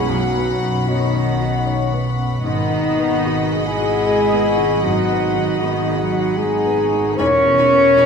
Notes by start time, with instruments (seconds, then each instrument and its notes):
Already playing: double bass section B1, felt piano F#2 B3 F#4 C#5, harp B3 F#4 B4 C#5 D#5 F#5 D#6, viola section C#4, clarinet E4, violin section F#5 B5
0.08 felt piano B1, harp B2, cello section F#3, clarinet D#4, french horn section F#4, flute F#5
0.35 felt piano B3
0.48 harp B3
0.62 felt piano F#2
0.87 cello section D#3, clarinet B3, french horn section D#4, felt piano F#4, harp C#5, flute D#5
1.14 felt piano C#5
1.40 felt piano F#4
1.66 felt piano C#5, harp C#5
1.92 felt piano B3
2.05 harp F#4
2.18 felt piano F#2
2.43 double bass section G#1, felt piano G#2, harp G#2, cello section D#3, clarinet B3, french horn section D#4, viola section D#5, flute D#5, violin section F#5 B5
2.70 felt piano D#3
2.84 harp B2
2.97 felt piano B3
3.25 felt piano F#4, harp G#4
3.52 felt piano G#4
3.65 cello section G#3, clarinet E4, french horn section G#4, flute G#5
3.79 felt piano F#4
4.06 felt piano G#4, harp G#4
4.32 felt piano B3
4.45 harp F#4
4.57 felt piano D#3
4.83 felt piano G#2, harp G#2, cello section F#3, clarinet D#4, french horn section F#4, flute F#5
5.09 felt piano B3
5.23 harp G#3
5.35 felt piano D#3
5.59 cello section D#3, clarinet B3, french horn section D#4, felt piano F#4, harp G#4, flute D#5
5.87 felt piano G#4
5.97 cello section F#3, clarinet D#4, french horn section F#4, flute F#5
6.12 felt piano F#4
6.36 cello section G#3, clarinet D#4, french horn section G#4, harp G#4, felt piano G#4, flute G#5
6.65 felt piano B3
6.78 harp F#4
6.92 felt piano D#3
7.17 double bass section E1, harp E2, felt piano E2, cello section C#4, viola section D#4, clarinet A#4, french horn section C#5, violin section G#5 B5, flute C#6
7.45 felt piano B2
7.58 double bass section E1, viola section D#4, violin section G#5 B5
7.72 felt piano B3
7.96 double bass section E1, viola section D#4, felt piano D#4, harp G#4, violin section G#5 B5